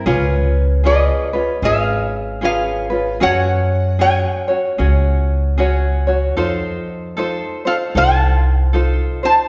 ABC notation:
X:1
M:4/4
L:1/8
Q:"Swing" 1/4=76
K:Gblyd
V:1 name="Resonator guitar played with a steel bar"
z2 [Ae]2 [Af]2 [Af]2 | [dg]2 [da]4 z2 | z3 [=Af] [c=a]3 [ca] |]
V:2 name="Ukulele"
[DFA_c]2 [DFAc] [DFc] [DFAc]2 [DFAc] [DFc] | [DGAd]2 [DGAd] [DGd] [DGAd]2 [DGAd] [DGd] | [EF=Ac]2 [EFAc] [EFc] [EFAc]2 [EFAc] [EFc] |]
V:3 name="Upright bass" clef=bass
D,,4 A,,,4 | G,,4 D,,4 | F,,4 C,,4 |]